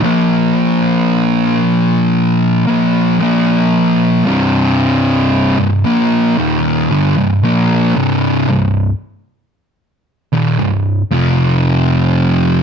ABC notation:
X:1
M:4/4
L:1/16
Q:1/4=57
K:Cm
V:1 name="Distorted electric guitar" clef=bass
[B,,F,B,]8- [B,,F,B,]2 [B,,F,B,]2 [B,,F,B,]4 | [C,,G,,C,]4- [C,,G,,C,] [C,,G,,] [B,,F,B,]2 [E,,B,,E,]2 [G,,D,] [C,,G,,] [B,,F,B,]2 [C,,G,,C,]2 | [C,,G,,]2 z4 z [E,,B,,] [C,,G,,]2 [F,,C,F,]6 |]